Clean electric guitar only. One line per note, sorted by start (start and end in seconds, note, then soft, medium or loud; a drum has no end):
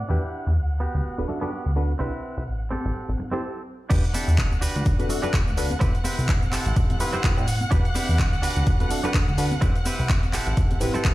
0.09 0.52 D4 loud
0.09 0.52 E4 medium
0.09 0.52 G4 loud
0.80 1.20 B3 medium
0.80 1.20 F#4 medium
0.80 1.21 G4 loud
1.28 muted clean electric guitar stroke soft
1.41 1.71 B3 medium
1.41 1.71 F#4 medium
1.41 1.72 G4 medium
1.99 2.42 C4 loud
1.99 2.42 E4 medium
1.99 2.43 B4 loud
2.71 3.10 C4 medium
2.71 3.11 G4 medium
2.71 3.11 A4 medium
3.18 muted clean electric guitar stroke soft
3.32 3.61 C4 medium
3.32 3.61 G4 medium
3.32 3.62 A4 medium
3.90 4.04 D4 loud
3.90 4.04 E4 loud
3.90 4.04 G4 loud
3.90 4.04 B4 loud
4.13 4.51 D4 medium
4.13 4.52 E4 medium
4.13 4.52 G4 medium
4.13 4.52 A4 loud
4.61 5.09 D4 medium
4.61 5.09 F#4 medium
4.61 5.10 G4 medium
4.61 5.10 B4 loud
5.22 5.40 D4 medium
5.22 5.40 F#4 medium
5.22 5.40 G4 medium
5.22 5.41 B4 medium
5.56 muted clean electric guitar stroke soft
5.80 5.94 C4 loud
5.80 5.94 E4 loud
5.80 5.95 G4 loud
5.80 5.95 B4 loud
6.04 6.42 C4 medium
6.04 6.42 E4 medium
6.04 6.42 G4 medium
6.04 6.43 B4 loud
6.52 7.00 C4 medium
6.52 7.00 E4 medium
6.52 7.00 G4 medium
6.52 7.01 A4 loud
7.13 7.30 C4 medium
7.13 7.31 E4 medium
7.13 7.31 G4 medium
7.13 7.31 C5 medium
7.47 muted clean electric guitar stroke soft
7.71 7.85 D4 loud
7.71 7.85 E4 loud
7.71 7.85 G4 loud
7.71 7.86 B4 loud
7.95 8.32 D4 medium
7.95 8.33 E4 medium
7.95 8.33 G4 medium
7.95 8.33 B4 loud
8.42 8.90 D4 medium
8.42 8.90 F#4 medium
8.42 8.91 G4 medium
8.42 8.91 B4 loud
9.03 9.21 D4 medium
9.03 9.21 F#4 medium
9.03 9.21 G4 medium
9.03 9.22 B4 loud
9.37 muted clean electric guitar stroke soft
9.61 9.75 C4 loud
9.61 9.75 E4 loud
9.61 9.76 G4 loud
9.61 9.76 B4 loud
9.85 10.23 C4 medium
9.85 10.23 E4 medium
9.85 10.23 G4 medium
9.85 10.24 B4 loud
10.33 10.81 C4 medium
10.33 10.81 E4 medium
10.33 10.81 G4 medium
10.33 10.82 A4 loud
10.94 11.11 C4 medium
10.94 11.12 E4 medium
10.94 11.12 G4 medium
10.94 11.12 A4 loud